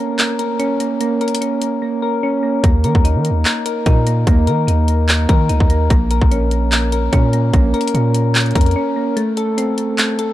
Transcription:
0.00 0.18 A#3 medium
0.00 0.58 C#4 medium
0.00 0.38 A#4 medium
0.19 0.79 A#3 medium
0.19 clap loud
0.19 closed hi-hat medium
0.39 1.20 A#4 medium
0.39 closed hi-hat medium
0.59 1.40 C#4 loud
0.59 closed hi-hat medium
0.80 1.00 A#3 medium
0.80 closed hi-hat medium
1.01 1.81 A#3 medium
1.01 closed hi-hat medium
1.21 2.01 A#4 medium
1.21 closed hi-hat soft
1.28 closed hi-hat medium
1.35 closed hi-hat medium
1.41 2.22 C#4 medium
1.41 closed hi-hat medium
1.62 closed hi-hat medium
1.82 2.42 A#3 medium
2.02 2.64 A#4 medium
2.23 2.64 C#4 loud
2.43 2.62 A#3 medium
2.63 2.86 D#2 loud
2.63 3.44 A#3 medium
2.63 kick loud
2.63 closed hi-hat medium
2.84 2.94 D#3 loud
2.84 3.64 A#4 medium
2.84 closed hi-hat medium
2.95 3.17 D#2 loud
2.95 kick medium
3.04 3.85 D#4 medium
3.04 closed hi-hat medium
3.15 3.32 D#3 loud
3.25 closed hi-hat medium
3.30 3.45 D#2 loud
3.45 4.06 A#3 medium
3.45 clap loud
3.45 closed hi-hat medium
3.66 4.46 A#4 medium
3.66 closed hi-hat medium
3.86 4.25 A#2 loud
3.86 4.66 D#4 medium
3.86 kick loud
3.86 closed hi-hat medium
4.07 4.26 A#3 medium
4.07 closed hi-hat medium
4.27 4.49 D#2 loud
4.27 5.08 A#3 medium
4.27 kick loud
4.27 closed hi-hat medium
4.47 4.67 D#3 loud
4.47 5.28 A#4 medium
4.47 closed hi-hat medium
4.67 5.27 D#2 loud
4.67 5.48 D#4 medium
4.67 closed hi-hat medium
4.88 closed hi-hat medium
5.09 5.69 A#3 medium
5.09 clap loud
5.09 closed hi-hat medium
5.29 5.51 D#3 loud
5.29 5.91 A#4 medium
5.29 kick loud
5.29 closed hi-hat medium
5.49 5.60 C#2 loud
5.49 5.90 D#4 medium
5.49 closed hi-hat medium
5.60 5.89 D#2 loud
5.60 kick medium
5.70 5.90 A#3 medium
5.70 closed hi-hat medium
5.90 6.20 A#1 loud
5.90 6.71 A#3 medium
5.90 kick loud
5.90 closed hi-hat medium
6.11 6.91 A#4 medium
6.11 closed hi-hat medium
6.22 7.09 A#1 loud
6.22 kick medium
6.31 7.11 C#4 medium
6.31 closed hi-hat medium
6.51 closed hi-hat medium
6.72 7.32 A#3 medium
6.72 clap loud
6.72 closed hi-hat medium
6.92 7.73 A#4 medium
6.92 closed hi-hat medium
7.12 7.52 A#2 loud
7.12 7.93 C#4 loud
7.12 kick loud
7.12 closed hi-hat medium
7.33 7.52 A#3 medium
7.33 closed hi-hat medium
7.53 7.73 A#1 loud
7.53 8.34 A#3 medium
7.53 kick loud
7.53 closed hi-hat medium
7.74 8.54 A#4 medium
7.74 closed hi-hat soft
7.81 closed hi-hat medium
7.88 closed hi-hat medium
7.94 8.53 A#2 loud
7.94 8.75 C#4 medium
7.94 closed hi-hat medium
8.14 closed hi-hat medium
8.35 8.95 A#3 medium
8.35 clap loud
8.35 closed hi-hat medium
8.41 closed hi-hat medium
8.46 closed hi-hat soft
8.51 closed hi-hat soft
8.55 8.75 F2 loud
8.55 9.17 A#4 medium
8.55 kick loud
8.55 closed hi-hat medium
8.61 closed hi-hat medium
8.66 closed hi-hat medium
8.71 closed hi-hat soft
8.76 9.17 C#4 loud
8.96 9.17 A#3 medium
9.17 9.97 A3 medium
9.17 closed hi-hat medium
9.37 10.18 A4 medium
9.37 closed hi-hat medium
9.58 10.33 C4 medium
9.58 closed hi-hat medium
9.78 closed hi-hat medium
9.98 10.33 A3 medium
9.98 clap loud
9.98 closed hi-hat medium
10.19 10.33 A4 medium
10.19 closed hi-hat medium

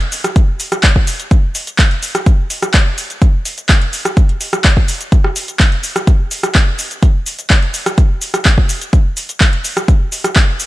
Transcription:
0.01 closed hi-hat soft
0.12 open hi-hat loud
0.12 shaker medium
0.24 cross-stick medium
0.24 closed hi-hat medium
0.24 shaker soft
0.36 kick loud
0.36 closed hi-hat medium
0.36 shaker soft
0.60 open hi-hat loud
0.60 shaker medium
0.72 cross-stick medium
0.72 closed hi-hat soft
0.72 shaker soft
0.83 kick loud
0.83 clap loud
0.83 closed hi-hat medium
0.83 shaker soft
0.96 kick medium
1.07 open hi-hat loud
1.07 shaker medium
1.20 closed hi-hat medium
1.20 shaker soft
1.31 kick loud
1.31 closed hi-hat medium
1.31 shaker soft
1.55 open hi-hat loud
1.55 shaker medium
1.67 closed hi-hat medium
1.67 shaker soft
1.79 kick loud
1.79 clap loud
1.79 closed hi-hat medium
1.79 shaker soft
1.91 closed hi-hat soft
2.03 open hi-hat loud
2.03 shaker medium
2.15 cross-stick medium
2.15 closed hi-hat medium
2.15 shaker soft
2.26 kick loud
2.26 closed hi-hat medium
2.26 shaker soft
2.50 open hi-hat loud
2.50 shaker medium
2.62 cross-stick medium
2.62 closed hi-hat soft
2.62 shaker soft
2.74 kick loud
2.74 clap loud
2.74 closed hi-hat medium
2.74 shaker soft
2.98 open hi-hat loud
2.98 shaker medium
3.10 closed hi-hat medium
3.10 shaker soft
3.22 kick loud
3.22 closed hi-hat medium
3.22 shaker soft
3.45 open hi-hat loud
3.45 shaker medium
3.58 closed hi-hat medium
3.58 shaker soft
3.69 kick loud
3.69 clap loud
3.69 closed hi-hat medium
3.69 shaker soft
3.82 closed hi-hat soft
3.93 open hi-hat loud
3.93 shaker medium
4.05 cross-stick medium
4.05 closed hi-hat medium
4.05 shaker soft
4.17 kick loud
4.17 closed hi-hat medium
4.17 shaker soft
4.29 closed hi-hat soft
4.41 open hi-hat loud
4.41 shaker medium
4.53 cross-stick medium
4.53 closed hi-hat soft
4.53 shaker soft
4.64 kick loud
4.64 clap loud
4.64 closed hi-hat medium
4.64 shaker soft
4.77 kick medium
4.88 open hi-hat loud
4.88 shaker medium
5.01 closed hi-hat soft
5.01 shaker soft
5.12 kick loud
5.12 closed hi-hat medium
5.12 shaker soft
5.24 cross-stick medium
5.36 open hi-hat loud
5.36 shaker medium
5.48 closed hi-hat soft
5.48 shaker soft
5.60 kick loud
5.60 clap loud
5.60 closed hi-hat medium
5.60 shaker soft
5.72 closed hi-hat soft
5.83 open hi-hat loud
5.83 shaker medium
5.96 cross-stick medium
5.96 closed hi-hat soft
5.96 shaker soft
6.07 kick loud
6.07 closed hi-hat medium
6.07 shaker soft
6.31 open hi-hat loud
6.31 shaker medium
6.43 cross-stick medium
6.43 closed hi-hat soft
6.43 shaker soft
6.55 kick loud
6.55 clap loud
6.55 closed hi-hat medium
6.55 shaker soft
6.79 open hi-hat loud
6.79 shaker medium
6.91 closed hi-hat soft
6.91 shaker soft
7.03 kick loud
7.03 closed hi-hat medium
7.03 shaker soft
7.26 open hi-hat loud
7.26 shaker medium
7.39 closed hi-hat soft
7.39 shaker soft
7.50 kick loud
7.50 clap loud
7.50 closed hi-hat medium
7.50 shaker soft
7.62 closed hi-hat soft
7.74 open hi-hat loud
7.74 shaker medium
7.86 cross-stick medium
7.86 closed hi-hat soft
7.86 shaker soft
7.98 kick loud
7.98 closed hi-hat medium
7.98 shaker soft
8.21 open hi-hat loud
8.21 shaker medium
8.34 cross-stick medium
8.34 closed hi-hat soft
8.34 shaker soft
8.45 kick loud
8.45 clap loud
8.45 closed hi-hat medium
8.45 shaker soft
8.58 kick medium
8.69 open hi-hat loud
8.69 shaker medium
8.81 closed hi-hat medium
8.81 shaker soft
8.93 kick loud
8.93 closed hi-hat medium
8.93 shaker soft
9.17 open hi-hat loud
9.17 shaker medium
9.29 closed hi-hat medium
9.29 shaker soft
9.41 kick loud
9.41 clap loud
9.41 closed hi-hat medium
9.41 shaker soft
9.53 closed hi-hat soft
9.64 open hi-hat loud
9.64 shaker medium
9.77 cross-stick medium
9.77 closed hi-hat medium
9.77 shaker soft
9.88 kick loud
9.88 closed hi-hat medium
9.88 shaker soft
10.12 open hi-hat loud
10.12 shaker medium
10.24 cross-stick medium
10.24 closed hi-hat medium
10.24 shaker soft
10.36 kick loud
10.36 clap loud
10.36 closed hi-hat medium
10.36 shaker soft
10.60 open hi-hat loud
10.60 shaker medium

